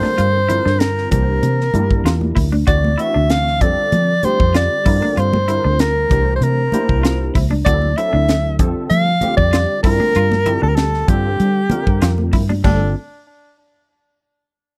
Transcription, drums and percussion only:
0.03 snare soft
0.03 high conga medium
0.18 closed hi-hat medium
0.49 closed hi-hat medium
0.49 low conga medium
0.67 snare soft
0.80 snare medium
0.80 closed hi-hat medium
0.98 snare soft
1.11 kick loud
1.11 closed hi-hat medium
1.11 low conga medium
1.43 closed hi-hat medium
1.43 high conga medium
1.61 snare soft
1.74 closed hi-hat medium
1.74 high conga medium
1.74 low conga medium
1.91 kick medium
2.06 snare loud
2.06 closed hi-hat medium
2.21 high conga medium
2.36 kick medium
2.36 open hi-hat medium
2.36 low conga medium
2.53 high conga medium
2.67 kick loud
2.67 closed hi-hat medium
2.84 high conga medium
2.99 closed hi-hat medium
3.30 snare loud
3.30 closed hi-hat medium
3.47 snare soft
3.61 kick loud
3.61 closed hi-hat medium
3.61 low conga medium
3.92 closed hi-hat medium
3.92 high conga medium
4.23 closed hi-hat medium
4.23 high conga medium
4.23 low conga medium
4.40 kick medium
4.54 snare loud
4.54 closed hi-hat medium
4.86 kick loud
4.86 open hi-hat medium
4.86 low conga medium
5.02 high conga medium
5.17 closed hi-hat medium
5.33 high conga medium
5.48 closed hi-hat medium
5.79 snare loud
5.79 closed hi-hat medium
6.10 kick medium
6.10 closed hi-hat medium
6.10 low conga medium
6.41 closed hi-hat medium
6.41 high conga medium
6.72 closed hi-hat medium
6.72 high conga medium
6.72 low conga medium
6.89 kick medium
7.05 snare loud
7.05 closed hi-hat medium
7.35 kick medium
7.35 open hi-hat medium
7.35 low conga medium
7.50 high conga medium
7.66 kick loud
7.66 closed hi-hat medium
7.82 high conga medium
7.98 closed hi-hat medium
8.29 snare medium
8.29 closed hi-hat medium
8.59 kick medium
8.59 closed hi-hat medium
8.59 low conga medium
8.90 closed hi-hat medium
8.90 high conga medium
9.21 closed hi-hat medium
9.21 high conga medium
9.21 low conga medium
9.38 kick medium
9.53 snare loud
9.53 closed hi-hat medium
9.84 kick loud
9.84 open hi-hat medium
9.84 low conga medium
10.00 high conga medium
10.15 closed hi-hat medium
10.32 snare soft
10.32 high conga medium
10.46 closed hi-hat medium
10.46 low conga medium
10.77 snare loud
10.77 closed hi-hat medium
10.94 snare soft
11.08 kick loud
11.08 closed hi-hat medium
11.08 low conga medium
11.40 closed hi-hat medium
11.70 closed hi-hat medium
11.70 high conga medium
11.70 low conga medium
11.87 kick medium
12.02 snare loud
12.02 closed hi-hat medium
12.18 high conga medium
12.33 kick medium
12.33 open hi-hat medium
12.33 low conga medium
12.50 high conga medium
12.64 kick loud
12.64 crash medium
12.64 high conga medium

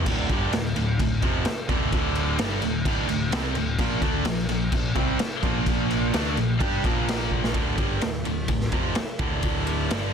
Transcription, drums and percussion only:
0.06 kick loud
0.06 crash loud
0.06 crash medium
0.29 kick loud
0.29 crash medium
0.53 snare loud
0.53 crash medium
0.66 snare soft
0.76 crash medium
0.99 kick medium
0.99 crash medium
1.22 kick loud
1.22 crash medium
1.45 snare loud
1.45 crash medium
1.69 kick loud
1.69 crash medium
1.92 kick loud
1.92 crash medium
2.15 crash medium
2.39 snare loud
2.39 crash medium
2.62 crash medium
2.85 kick loud
2.85 crash medium
3.09 crash medium
3.32 snare loud
3.32 crash medium
3.55 crash medium
3.79 kick loud
3.79 crash medium
4.02 kick loud
4.02 crash medium
4.25 snare loud
4.25 crash medium
4.38 snare soft
4.49 crash medium
4.72 kick loud
4.72 crash medium
4.95 kick loud
4.95 crash medium
5.19 snare loud
5.19 crash medium
5.43 kick loud
5.43 crash medium
5.66 kick loud
5.66 crash medium
5.90 crash medium
6.13 snare loud
6.13 crash medium
6.37 crash medium
6.61 kick loud
6.61 crash medium
6.84 kick loud
6.84 crash medium
7.08 snare loud
7.08 crash medium
7.31 kick medium
7.44 snare medium
7.54 kick medium
7.54 ride medium
7.78 kick medium
7.78 ride medium
8.01 snare loud
8.01 ride medium
8.25 ride medium
8.48 kick medium
8.48 ride medium
8.61 snare soft
8.72 kick loud
8.72 ride medium
8.95 snare loud
8.95 ride medium
9.19 kick loud
9.19 ride medium
9.43 kick medium
9.43 ride medium
9.67 ride medium
9.90 snare loud
9.90 ride medium

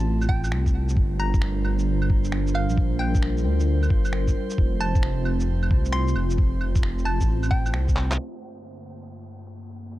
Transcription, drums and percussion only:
0.21 claves medium
0.21 shaker soft
0.29 kick loud
0.44 claves medium
0.44 shaker soft
0.52 finger snap loud
0.66 kick medium
0.66 shaker soft
0.89 shaker medium
0.97 kick loud
1.19 claves soft
1.34 kick loud
1.34 shaker medium
1.42 finger snap loud
1.65 claves medium
1.79 shaker soft
2.02 claves medium
2.10 kick loud
2.24 shaker soft
2.32 finger snap loud
2.47 shaker soft
2.54 claves medium
2.70 shaker medium
2.77 kick loud
3.00 claves medium
3.15 kick loud
3.15 shaker soft
3.23 finger snap loud
3.37 shaker soft
3.60 shaker medium
3.83 claves medium
3.83 shaker soft
3.90 kick loud
4.05 claves medium
4.05 shaker soft
4.13 finger snap loud
4.28 kick medium
4.28 shaker soft
4.50 shaker soft
4.58 kick loud
4.81 claves medium
4.95 kick loud
4.95 shaker soft
5.03 finger snap loud
5.25 claves medium
5.40 shaker medium
5.63 claves medium
5.71 kick medium
5.85 shaker soft
5.93 finger snap loud
6.08 shaker soft
6.16 claves medium
6.30 shaker medium
6.38 kick loud
6.61 claves medium
6.76 kick loud
6.76 shaker medium
6.83 finger snap loud
6.98 shaker soft
7.06 claves medium
7.21 kick medium
7.21 shaker medium
7.43 claves medium
7.43 shaker soft
7.51 kick loud
7.66 claves medium
7.66 shaker medium
7.74 finger snap loud
7.88 kick medium
7.88 shaker soft
7.96 clap medium
8.11 clap medium
8.11 shaker medium
8.19 crash medium
8.56 shaker soft
9.02 shaker medium
9.46 shaker soft
9.69 shaker soft
9.92 shaker medium

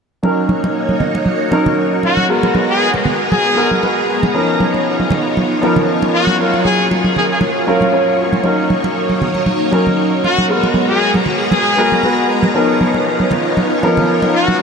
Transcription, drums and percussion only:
0.23 muted conga soft
0.49 high conga medium
0.64 muted conga medium
0.89 high conga medium
1.00 low conga medium
1.15 muted conga soft
1.26 high conga medium
1.52 muted conga medium
1.66 high conga medium
1.66 low conga medium
2.03 muted conga soft
2.17 high conga medium
2.43 muted conga medium
2.55 high conga medium
2.94 muted conga soft
2.94 high conga medium
3.05 low conga medium
3.32 muted conga medium
3.32 high conga medium
3.71 high conga medium
3.83 muted conga soft
4.23 muted conga medium
4.23 high conga medium
4.60 high conga medium
4.74 muted conga soft
5.00 high conga medium
5.10 muted conga medium
5.10 low conga medium
5.37 high conga medium
5.63 muted conga soft
5.76 high conga medium
5.76 low conga medium
6.02 muted conga medium
6.27 high conga medium
6.54 muted conga soft
6.65 high conga medium
6.91 muted conga medium
7.04 high conga medium
7.16 low conga medium
7.41 muted conga soft
7.41 high conga medium
7.81 muted conga medium
7.81 high conga medium
8.33 muted conga soft
8.33 high conga medium
8.44 muted conga soft
8.70 high conga medium
8.84 muted conga medium
9.10 high conga medium
9.22 low conga medium
9.35 muted conga soft
9.46 high conga medium
9.73 muted conga medium
9.87 high conga medium
9.87 low conga medium
10.24 muted conga soft
10.38 high conga medium
10.63 muted conga medium
10.74 high conga medium
11.14 muted conga soft
11.14 high conga medium
11.26 low conga medium
11.51 muted conga medium
11.51 high conga medium
11.92 high conga medium
12.03 muted conga soft
12.43 muted conga medium
12.43 high conga medium
12.81 high conga medium
12.94 muted conga soft
13.20 high conga medium
13.31 muted conga medium
13.31 low conga medium
13.57 high conga medium
13.83 muted conga soft
13.97 high conga medium
13.97 low conga medium
14.22 muted conga medium
14.48 high conga medium

